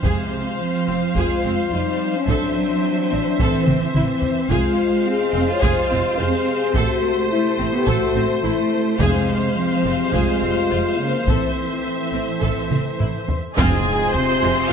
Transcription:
0.03 double bass section F1, cello section C3, trombone section F3 C4, french horn section G#3, viola section G#4, violin section C5 F5, taiko
0.59 cello section F3, french horn section C4
0.88 double bass section F1, viola section C4
1.16 double bass section F1, cello section G#3, french horn section F4, viola section G#4, taiko
1.44 double bass section F1, viola section C4
1.72 double bass section F1, cello section G3, french horn section D#4, viola section F4
2.14 cello section F3, french horn section C#4
2.27 double bass section A1, trombone section E3, cello section F#3, french horn section D4, viola section A4, violin section E5, taiko
3.12 double bass section A1, viola section C4
3.39 double bass section A1, cello section E3, french horn section C4, viola section A4, taiko
3.67 double bass section A1, viola section C4, taiko mid
3.94 double bass section A1, cello section E3, french horn section C4, viola section E4, taiko mid
4.22 taiko low
4.50 double bass section F1, trombone section C3 G#3, cello section G#3, french horn section F4, viola section G#4, violin section C5 F5, taiko
5.06 cello section C4, french horn section G#4
5.35 double bass section F1, viola section C4
5.48 cello section F4, french horn section C#5
5.62 double bass section F1, cello section F4, viola section G#4, french horn section C5, taiko
5.91 double bass section F1, viola section C4
6.18 double bass section F1, cello section C4, viola section F4, french horn section G#4
6.74 double bass section A1, cello section A3, trombone section A3, french horn section F#4, viola section A4, violin section C5, taiko
7.31 cello section A3, french horn section E4
7.59 double bass section A1, viola section C4
7.74 cello section B3, french horn section G4
7.87 double bass section A1, cello section A3, french horn section F#4, viola section A4, taiko
8.15 double bass section A1, viola section C4
8.43 double bass section A1, cello section A3, french horn section E4, viola section E4
8.99 double bass section F1, timpani F2, cello section C3, trombone section C3 G#3, french horn section G#3, viola section G#4, violin section C5 F5, taiko
9.56 cello section F3, french horn section C4
9.85 double bass section F1, viola section C4
10.12 double bass section F1, cello section G#3, french horn section F4, viola section G#4, taiko
10.42 double bass section F1, viola section C4
10.71 double bass section F1, viola section F4
10.98 cello section C#3, french horn section A#3
11.27 double bass section A1, trombone section E3 A3, cello section E3, french horn section C4, viola section A4, violin section E5, taiko
12.14 double bass section A1, viola section C4
12.42 double bass section A1, viola section A4, taiko
12.71 double bass section A1, viola section C4, taiko mid
13.00 double bass section A1, viola section E4, taiko low-mid
13.29 taiko low
13.56 double bass section F1, cello section F2, timpani F2, trombone section G#2, french horn section G#3, string section C4 F4 G#4 C5, viola section C4 F4, violin section G#4 G#5, trumpet section G#4, taiko, impact
14.12 trombone section C3, french horn section C4, violin section C5 C6, trumpet section C5, taiko low
14.43 double bass section F1, cello section F2, viola section F3 G#3
14.69 french horn section F4, violin section F5

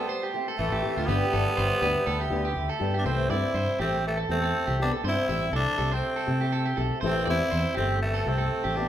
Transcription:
Already playing: alto saxophone G3, tenor saxophone B3, accordion G5 A5 C6
0.09 clean electric guitar C5
0.23 clean electric guitar G4
0.34 steel-string acoustic guitar A3 C4 G4
0.48 clean electric guitar A4
0.58 fingered electric bass A1, alto saxophone E3, tenor saxophone A3
0.72 fingered electric bass A1, clean electric guitar G4
0.83 steel-string acoustic guitar A3 C4 G4
0.97 fingered electric bass D2, clean electric guitar F4
1.06 fingered electric bass G1, steel-string acoustic guitar E3 B3 D4 G4, alto saxophone G3, tenor saxophone B3, clean electric guitar G4, accordion E5 B5
1.33 fingered electric bass G1, steel-string acoustic guitar B3 D4 G4, clean electric guitar A4
1.57 fingered electric bass G1, clean electric guitar C5
1.82 fingered electric bass D2, steel-string acoustic guitar B3 D4 G4, clean electric guitar B4
2.07 fingered electric bass D2, clean electric guitar A4
2.20 clean electric guitar G4
2.30 fingered electric bass D2, steel-string acoustic guitar B3 D4 G4
2.45 clean electric guitar G4
2.56 fingered electric bass D2
2.69 clean electric guitar A4
2.80 fingered electric bass G2, steel-string acoustic guitar B3 D4 G4
2.94 clean electric guitar G4
2.99 alto saxophone B3, tenor saxophone D4
3.04 fingered electric bass C2, steel-string acoustic guitar E3 A3 G4, alto saxophone A3, tenor saxophone C4, clean electric guitar C5, muted steel-string acoustic guitar stroke
3.30 fingered electric bass G2, steel-string acoustic guitar A3 C4 G4, alto saxophone C4, tenor saxophone E4, clean electric guitar D5
3.54 fingered electric bass G2, clean electric guitar C5
3.79 fingered electric bass A1, alto saxophone A3, steel-string acoustic guitar A3 C4 G4, tenor saxophone C4, clean electric guitar G4
4.06 alto saxophone E3, tenor saxophone A3
4.17 clean electric guitar A4
4.29 fingered electric bass E2, steel-string acoustic guitar A3 C4 G4, alto saxophone A3, tenor saxophone C4
4.42 clean electric guitar A4
4.67 fingered electric bass C2, clean electric guitar G4
4.80 steel-string acoustic guitar A3 C4 G4, alto saxophone B3, tenor saxophone D4
4.93 clean electric guitar A4
5.04 fingered electric bass G2, alto saxophone C4, clean electric guitar C5
5.08 tenor saxophone E4
5.29 fingered electric bass A1, steel-string acoustic guitar A3 C4 G4, clean electric guitar E5
5.52 fingered electric bass C2, alto saxophone A3, tenor saxophone D4, clean electric guitar A4
5.78 fingered electric bass C2, steel-string acoustic guitar A3 C4 G4, clean electric guitar A4
5.92 alto saxophone A3, tenor saxophone C4, clean electric guitar C5
6.16 clean electric guitar A4
6.27 fingered electric bass C3, steel-string acoustic guitar A3 G4, muted steel-string acoustic guitar stroke
6.41 clean electric guitar G4
6.52 clean electric guitar A4
6.66 clean electric guitar G4
6.77 fingered electric bass B1, steel-string acoustic guitar A3 C4 G4, clean electric guitar A4
7.01 fingered electric bass A1, steel-string acoustic guitar E3 A3 C4 G4, alto saxophone A3, clean electric guitar C5
7.05 tenor saxophone C4
7.25 fingered electric bass E2, steel-string acoustic guitar A3 C4 G4, alto saxophone C4, clean electric guitar D5
7.30 tenor saxophone E4
7.51 fingered electric bass E2, clean electric guitar C5
7.75 fingered electric bass G1, alto saxophone A3, tenor saxophone C4, steel-string acoustic guitar C4 G4, clean electric guitar G4
7.79 steel-string acoustic guitar A3
8.02 alto saxophone E3, tenor saxophone A3
8.14 clean electric guitar A4
8.26 fingered electric bass C2, steel-string acoustic guitar A3 C4 G4, alto saxophone A3, tenor saxophone C4
8.38 clean electric guitar A4
8.64 fingered electric bass A1, clean electric guitar G4
8.76 steel-string acoustic guitar A3 C4 G4, alto saxophone B3, tenor saxophone D4

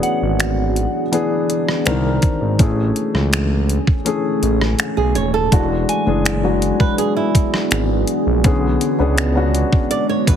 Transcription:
Already playing: grand piano E3 B3 D4 G#4, ambient pad E3 B3 D4 F#4 G#4
0.03 synth bell F#5, closed hi-hat
0.22 analog synth bass G#1
0.40 finger snap, closed hi-hat
0.76 closed hi-hat
1.11 grand piano E3 B3 D4 G#4, closed hi-hat
1.50 closed hi-hat
1.68 cross-stick
1.85 analog synth bass C2, grand piano D3 C4 D4 A#4, finger snap, closed hi-hat
1.91 grand piano D#3
2.22 kick, closed hi-hat
2.41 analog synth bass G#1
2.58 analog synth bass A1, grand piano E3 A3 C#4 G#4, ambient pad A3 C#4 G#4, kick, closed hi-hat
2.96 closed hi-hat
3.14 analog synth bass C#2, cross-stick
3.33 finger snap, closed hi-hat
3.69 closed hi-hat
3.87 kick
4.04 grand piano E3 A3 C#4 G#4, closed hi-hat
4.42 analog synth bass A1, closed hi-hat
4.61 cross-stick
4.79 finger snap, closed hi-hat
4.97 analog synth bass B1, nylon-string guitar G#4
5.15 analog synth bass D#1, nylon-string guitar C#5, closed hi-hat
5.34 nylon-string guitar A4
5.51 analog synth bass E1, grand piano E3 G#3 D4 F#4, ambient pad E3 B3 D4 F#4 G#4, kick, closed hi-hat
5.89 synth bell G#5, closed hi-hat
6.06 analog synth bass F#1, grand piano E3 G#3 D4 G#4
6.25 finger snap, closed hi-hat
6.43 grand piano E3 F#3 D4 F#4
6.50 grand piano G#3
6.62 closed hi-hat
6.80 nylon-string guitar B4, kick
6.98 nylon-string guitar G#4, closed hi-hat
7.16 nylon-string guitar E4
7.35 kick, closed hi-hat
7.54 cross-stick
7.71 analog synth bass G#1, finger snap, closed hi-hat
8.07 closed hi-hat
8.26 analog synth bass A#1
8.44 analog synth bass B1, grand piano D3 B3 C#4 G#4, ambient pad G#3 F#4, kick, closed hi-hat
8.81 closed hi-hat
8.99 analog synth bass C#2, grand piano B3 C#4 D4 G#4
9.18 finger snap, closed hi-hat
9.35 grand piano B3 C#4 D4 F#4
9.55 closed hi-hat
9.73 kick
9.91 nylon-string guitar D5, closed hi-hat
10.09 nylon-string guitar C#5
10.27 analog synth bass A1, nylon-string guitar B4, kick, closed hi-hat

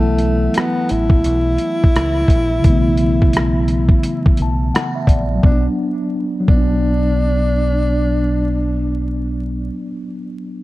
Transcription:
Already playing: fingered electric bass B1, tine electric piano E3 F#3 A3 B3 E4 E5 F#5 A5, tenor saxophone A3
0.18 closed hi-hat
0.54 tenor saxophone B3, cross-stick, closed hi-hat
0.89 fingered electric bass A1, tenor saxophone E4, closed hi-hat
1.10 kick
1.24 fingered electric bass B1, closed hi-hat
1.58 closed hi-hat
1.84 kick
1.96 fingered electric bass C#2, cross-stick, closed hi-hat
2.28 fingered electric bass A#1, kick, closed hi-hat
2.61 tine electric piano C#3 E3 F#3, kick, closed hi-hat
2.65 fingered electric bass B1, tine electric piano A3
2.69 tine electric piano B3
2.97 closed hi-hat
3.22 kick
3.33 cross-stick, closed hi-hat
3.68 closed hi-hat
3.89 kick
4.03 closed hi-hat
4.26 muted fingered electric bass stroke, kick
4.37 fingered electric bass B1, closed hi-hat
4.42 tine electric piano A5
4.75 tine electric piano F#5, cross-stick, closed hi-hat
4.96 tine electric piano E5
5.07 fingered electric bass A#1, tine electric piano D5, kick, closed hi-hat
5.35 tine electric piano F#3
5.43 fingered electric bass B1, tine electric piano B3, tenor saxophone D4, kick
5.52 tine electric piano D4
6.40 tine electric piano F#3
6.48 fingered electric bass B1, tine electric piano B3, tenor saxophone D4, kick
6.57 tine electric piano D4

